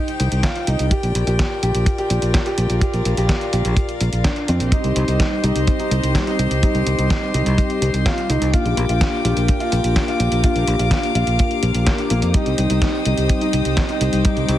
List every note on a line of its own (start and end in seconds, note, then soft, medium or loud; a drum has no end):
0.00 0.88 D#4 medium
0.00 0.88 G4 medium
0.00 0.88 C5 medium
0.00 2.78 G5 medium
0.08 closed hi-hat soft
0.20 0.30 C2 medium
0.20 closed hi-hat medium
0.32 0.41 C2 medium
0.32 closed hi-hat medium
0.43 0.64 F4 medium
0.43 kick loud
0.43 snare loud
0.43 closed hi-hat medium
0.56 closed hi-hat soft
0.67 0.77 C2 medium
0.67 0.88 D#4 medium
0.67 closed hi-hat medium
0.79 0.89 C2 medium
0.79 closed hi-hat medium
0.91 4.69 F4 medium
0.91 1.22 G4 loud
0.91 4.69 A#4 medium
0.91 4.69 D5 medium
0.91 kick loud
0.91 closed hi-hat medium
1.03 1.13 A#1 medium
1.03 closed hi-hat soft
1.15 1.25 A#1 medium
1.15 closed hi-hat medium
1.27 1.37 A#1 medium
1.27 1.58 G4 medium
1.27 closed hi-hat medium
1.39 kick loud
1.39 snare loud
1.39 closed hi-hat medium
1.63 1.72 A#1 medium
1.63 1.94 G4 medium
1.63 closed hi-hat medium
1.75 1.84 A#1 medium
1.75 closed hi-hat medium
1.86 kick loud
1.86 closed hi-hat medium
1.98 2.40 G4 medium
1.98 closed hi-hat soft
2.10 2.20 A#1 medium
2.10 closed hi-hat medium
2.22 2.32 A#1 medium
2.22 closed hi-hat medium
2.34 kick loud
2.34 snare loud
2.34 closed hi-hat medium
2.46 2.77 G4 medium
2.46 closed hi-hat soft
2.58 2.68 A#1 medium
2.58 closed hi-hat medium
2.70 2.80 A#1 medium
2.70 closed hi-hat medium
2.81 3.13 G4 medium
2.81 4.70 F5 medium
2.81 kick loud
2.81 closed hi-hat medium
2.94 3.03 A#1 medium
2.94 closed hi-hat soft
3.05 3.15 A#1 medium
3.05 closed hi-hat medium
3.17 3.27 A#1 medium
3.17 3.49 G4 medium
3.17 closed hi-hat soft
3.29 kick loud
3.29 snare loud
3.29 closed hi-hat medium
3.41 closed hi-hat soft
3.53 3.63 A#1 medium
3.53 3.84 G4 medium
3.53 closed hi-hat medium
3.65 3.75 A#1 medium
3.65 closed hi-hat soft
3.77 kick loud
3.77 closed hi-hat medium
3.89 closed hi-hat soft
4.01 4.10 A#1 medium
4.01 closed hi-hat medium
4.13 4.22 A#1 medium
4.13 closed hi-hat soft
4.24 4.45 D4 medium
4.24 kick loud
4.24 snare loud
4.24 closed hi-hat medium
4.36 closed hi-hat soft
4.48 4.58 F2 medium
4.48 4.69 C4 medium
4.48 closed hi-hat medium
4.60 4.70 A#1 medium
4.60 closed hi-hat soft
4.72 5.41 G3 medium
4.72 5.41 C4 medium
4.72 5.03 D#4 medium
4.72 5.41 D#4 medium
4.72 5.41 G4 loud
4.72 8.50 G4 medium
4.72 8.50 C5 medium
4.72 8.50 D#5 medium
4.72 8.50 C6 medium
4.72 kick loud
4.72 closed hi-hat medium
4.84 4.94 C2 medium
4.84 closed hi-hat soft
4.96 5.06 C2 medium
4.96 closed hi-hat medium
5.08 5.18 C2 medium
5.08 5.39 D#4 medium
5.08 closed hi-hat soft
5.20 kick loud
5.20 snare loud
5.20 closed hi-hat medium
5.44 5.53 C2 medium
5.44 6.60 G3 loud
5.44 6.60 C4 medium
5.44 6.60 D#4 medium
5.44 5.75 D#4 medium
5.44 6.60 G4 loud
5.44 closed hi-hat medium
5.56 5.65 C2 medium
5.56 closed hi-hat soft
5.67 kick loud
5.67 closed hi-hat medium
5.79 6.21 D#4 medium
5.79 closed hi-hat soft
5.91 6.01 C2 medium
5.91 closed hi-hat medium
6.03 6.13 C2 medium
6.03 closed hi-hat soft
6.15 kick loud
6.15 snare loud
6.15 closed hi-hat medium
6.27 6.58 D#4 medium
6.27 closed hi-hat soft
6.39 6.49 C2 medium
6.39 closed hi-hat medium
6.51 6.60 C2 medium
6.51 closed hi-hat soft
6.63 7.31 G3 medium
6.63 7.31 C4 medium
6.63 6.94 D#4 medium
6.63 7.31 D#4 medium
6.63 7.31 G4 loud
6.63 kick loud
6.63 closed hi-hat medium
6.75 6.84 C2 medium
6.75 closed hi-hat soft
6.87 6.96 C2 medium
6.87 closed hi-hat medium
6.98 7.08 C2 medium
6.98 7.30 D#4 medium
6.98 closed hi-hat soft
7.10 kick loud
7.10 snare loud
7.10 closed hi-hat medium
7.34 7.44 C2 medium
7.34 8.51 G3 medium
7.34 8.51 C4 medium
7.34 7.65 D#4 medium
7.34 8.51 D#4 medium
7.34 8.51 G4 medium
7.34 closed hi-hat medium
7.46 7.56 C2 medium
7.46 closed hi-hat soft
7.58 kick loud
7.58 closed hi-hat medium
7.70 closed hi-hat soft
7.82 7.91 C2 medium
7.82 closed hi-hat medium
7.94 8.03 C2 medium
7.94 closed hi-hat soft
8.06 8.27 F4 medium
8.06 kick loud
8.06 snare loud
8.06 closed hi-hat medium
8.18 closed hi-hat soft
8.29 8.39 C2 medium
8.29 8.50 D#4 medium
8.29 closed hi-hat medium
8.41 8.51 C2 medium
8.41 closed hi-hat soft
8.53 9.22 A#3 medium
8.53 9.22 D4 medium
8.53 8.84 F4 loud
8.53 12.31 F4 medium
8.53 9.22 F4 medium
8.53 9.22 G4 loud
8.53 12.31 A#4 medium
8.53 10.42 G5 medium
8.53 12.31 D6 medium
8.53 kick loud
8.53 closed hi-hat medium
8.65 8.75 A#1 medium
8.65 closed hi-hat soft
8.77 8.87 A#1 medium
8.77 closed hi-hat medium
8.89 8.99 A#1 medium
8.89 9.20 F4 medium
8.89 closed hi-hat soft
9.01 kick loud
9.01 snare loud
9.01 closed hi-hat medium
9.24 9.34 A#1 medium
9.24 10.41 A#3 loud
9.24 10.41 D4 medium
9.24 9.56 F4 medium
9.24 10.41 F4 medium
9.24 10.41 G4 loud
9.24 closed hi-hat medium
9.37 9.46 A#1 medium
9.37 closed hi-hat soft
9.48 kick loud
9.48 closed hi-hat medium
9.60 10.02 F4 medium
9.60 closed hi-hat soft
9.72 9.82 A#1 medium
9.72 closed hi-hat medium
9.84 9.94 A#1 medium
9.84 closed hi-hat soft
9.96 kick loud
9.96 snare loud
9.96 closed hi-hat medium
10.08 10.39 F4 medium
10.08 closed hi-hat soft
10.20 10.29 A#1 medium
10.20 closed hi-hat medium
10.32 10.41 A#1 medium
10.32 closed hi-hat soft
10.44 11.12 A#3 medium
10.44 11.12 D4 medium
10.44 10.75 F4 medium
10.44 11.12 F4 medium
10.44 11.12 G4 loud
10.44 12.32 F5 medium
10.44 kick loud
10.44 closed hi-hat medium
10.56 10.65 A#1 medium
10.56 closed hi-hat soft
10.68 10.77 A#1 medium
10.68 closed hi-hat medium
10.79 10.89 A#1 medium
10.79 11.10 F4 medium
10.79 closed hi-hat soft
10.91 kick loud
10.91 snare loud
10.91 closed hi-hat medium
11.03 closed hi-hat soft
11.15 11.25 A#1 medium
11.15 12.31 A#3 medium
11.15 12.31 D4 medium
11.15 11.46 F4 medium
11.15 12.31 F4 medium
11.15 12.31 G4 medium
11.15 closed hi-hat medium
11.27 11.37 A#1 medium
11.27 closed hi-hat medium
11.39 kick loud
11.39 closed hi-hat medium
11.51 closed hi-hat soft
11.63 11.72 A#1 medium
11.63 closed hi-hat medium
11.75 11.84 A#1 medium
11.75 closed hi-hat medium
11.87 12.07 A#3 medium
11.87 kick loud
11.87 snare loud
11.87 closed hi-hat medium
11.98 closed hi-hat soft
12.10 12.20 A#1 medium
12.10 12.31 A#3 medium
12.10 closed hi-hat medium
12.22 12.32 F2 medium
12.22 closed hi-hat medium
12.34 13.03 G3 medium
12.34 13.03 C4 medium
12.34 14.58 D#4 medium
12.34 13.03 D#4 medium
12.34 12.65 D#4 medium
12.34 13.03 G4 loud
12.34 14.58 C5 medium
12.34 14.58 G5 medium
12.34 14.23 D#6 medium
12.34 kick loud
12.34 closed hi-hat medium
12.46 12.56 C2 medium
12.46 closed hi-hat soft
12.58 12.68 C2 medium
12.58 closed hi-hat medium
12.70 12.80 C2 medium
12.70 13.01 D#4 medium
12.70 closed hi-hat medium
12.82 kick loud
12.82 snare loud
12.82 closed hi-hat medium
13.05 13.15 C2 medium
13.05 14.22 G3 loud
13.05 14.22 C4 medium
13.05 14.22 D#4 medium
13.05 13.37 D#4 medium
13.05 14.22 G4 loud
13.05 closed hi-hat medium
13.18 13.27 C2 medium
13.18 closed hi-hat medium
13.29 kick loud
13.29 closed hi-hat medium
13.41 13.83 D#4 medium
13.41 closed hi-hat soft
13.53 13.63 C2 medium
13.53 closed hi-hat medium
13.65 13.75 C2 medium
13.65 closed hi-hat medium
13.77 kick loud
13.77 snare loud
13.77 closed hi-hat medium
13.89 14.20 D#4 medium
13.89 closed hi-hat soft
14.01 14.11 C2 medium
14.01 closed hi-hat medium
14.13 14.22 C2 medium
14.13 closed hi-hat medium
14.25 14.58 G3 medium
14.25 14.58 C4 medium
14.25 14.58 D#4 medium
14.25 14.56 D#4 medium
14.25 14.58 G4 loud
14.25 14.58 D6 medium
14.25 kick loud
14.25 closed hi-hat medium
14.37 14.46 C2 medium
14.37 closed hi-hat soft
14.49 14.58 C2 medium
14.49 closed hi-hat medium